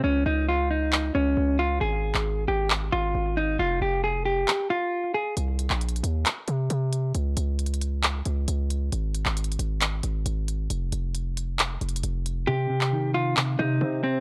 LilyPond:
<<
  \new Staff \with { instrumentName = "Clean electric guitar" } { \time 4/4 \key c \phrygian \tempo 4 = 135 des'8 ees'8 f'8 ees'4 des'4 f'8 | aes'4. g'8 r8 f'4 ees'8 | f'8 g'8 aes'8 g'4 f'4 aes'8 | r1 |
r1 | r1 | r1 | g'4. f'8 r8 ees'4 c'8 | }
  \new Staff \with { instrumentName = "Clean electric guitar" } { \clef bass \time 4/4 \key c \phrygian r1 | r1 | r1 | r1 |
r1 | r1 | r1 | c8 c8 ees4 c8 c8 c'4 | }
  \new Staff \with { instrumentName = "808-style bass" } { \clef bass \time 4/4 \key c \phrygian des,8 des,2 des,8 des,4 | aes,,8. aes,,8. aes,,4 aes,,8 aes,,4 | f,,8 f,,4. r2 | c,8. bes,,8. ees,8 r8 c8 c4 |
des,8 des,2 des,8 des,4 | aes,,8. aes,,8. aes,,4 aes,,8 aes,,4 | f,,8 f,,2 f,,8 f,,4 | r2 r8 c8 c4 | }
  \new DrumStaff \with { instrumentName = "Drums" } \drummode { \time 4/4 r4 r4 hc4 r4 | r8. hc16 r4 hc4 r4 | r4 r4 hc4 r4 | hh8 hh16 hc16 \tuplet 3/2 { hh16 hh16 hh16 hh16 r16 r16 } <hc hh>8 hh8 hh8 hh8 |
hh8 hh8 \tuplet 3/2 { hh16 hh16 hh16 hh16 r16 r16 } <hc hh>8 hh8 hh8 hh8 | hh8 hh16 hc16 \tuplet 3/2 { hh16 hh16 hh16 hh16 r16 r16 } <hc hh>8 hh8 hh8 hh8 | hh8 hh8 hh8 hh8 \tuplet 3/2 { <hc hh>16 r16 r16 hh16 hh16 hh16 } hh8 hh8 | r8. hc16 r4 hc4 r4 | }
>>